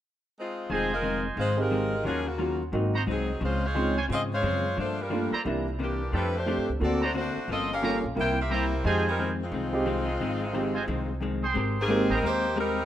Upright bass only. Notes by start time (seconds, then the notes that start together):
0.70 F1
1.37 G#1
2.05 D#2
2.73 G#1
3.07 C2
3.41 C#2
4.10 G#2
4.43 F#2
4.78 G2
5.32 muted upright bass stroke
5.45 C2
6.13 F2
6.58 G2
6.69 C#2
6.81 D2
7.36 muted upright bass stroke
7.48 G1
8.04 A#1
8.17 C2
8.85 F2
9.52 C2
10.20 G#1
10.88 C2
11.55 G#1
12.10 A1
12.22 D#2